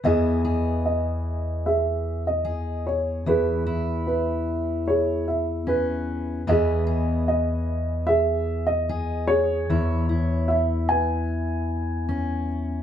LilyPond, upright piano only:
\new Staff \with { instrumentName = "Upright piano" } { \time 4/4 \key e \major \tempo 4 = 75 << { dis''4 dis''4 e''8. dis''8. cis''8 | b'4 b'4 cis''8 e''8 b'4 | dis''4 dis''4 e''8. dis''8. cis''8~ | cis''4 e''8 gis''2 r8 | } \\ { gis'2 gis'2 | gis'2 gis'2 | gis'2 gis'4. gis'8~ | gis'4. b'2 r8 | } >> }